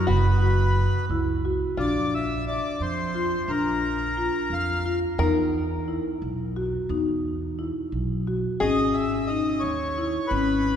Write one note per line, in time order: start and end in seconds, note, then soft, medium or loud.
0.07 0.87 F#1 medium
0.07 1.40 F#4 medium
0.07 1.05 B4 medium
0.42 0.89 F#4 medium
1.09 1.62 C#2 medium
1.09 1.34 E4 medium
1.45 1.68 F#4 medium
1.77 2.57 A#1 medium
1.77 2.26 D4 medium
1.77 5.15 F4 medium
1.77 2.14 D5 medium
2.15 2.45 E5 medium
2.47 2.82 D5 medium
2.47 2.94 E5 medium
2.80 3.33 F2 medium
2.80 3.51 C5 medium
3.15 3.38 F4 medium
3.48 4.28 A#1 medium
3.48 3.96 D4 medium
3.48 4.54 A#4 medium
4.17 4.64 F4 medium
4.50 5.03 F2 medium
4.50 4.99 F5 medium
4.86 5.09 F4 medium
5.18 5.98 E2 medium
5.18 5.67 D#4 medium
5.18 8.22 A#4 medium
5.88 6.35 E4 medium
6.22 6.75 B1 medium
6.56 6.80 F#4 medium
6.89 7.69 E2 medium
6.89 7.37 D#4 medium
7.59 8.06 E4 medium
7.92 8.45 B1 medium
8.27 8.51 F#4 medium
8.60 9.40 G#1 medium
8.60 9.09 C#4 medium
8.60 10.76 G#4 medium
8.60 8.96 D#5 medium
8.93 9.29 E5 medium
9.27 9.77 D#4 medium
9.27 9.63 D#5 medium
9.60 10.16 D#2 medium
9.60 10.32 C#5 medium
9.98 10.21 E4 medium
10.27 10.76 G#1 medium
10.27 10.76 B4 medium
10.32 10.76 C#4 medium